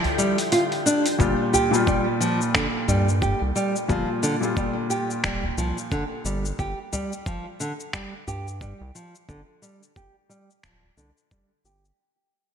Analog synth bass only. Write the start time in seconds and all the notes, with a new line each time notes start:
1.20 G1
2.88 G2
3.42 C2
3.89 G1
5.24 D1
5.57 C2
6.25 G1
6.59 G1
8.28 G2
8.81 C2
9.29 G1
10.64 D1
10.97 C2
11.65 G1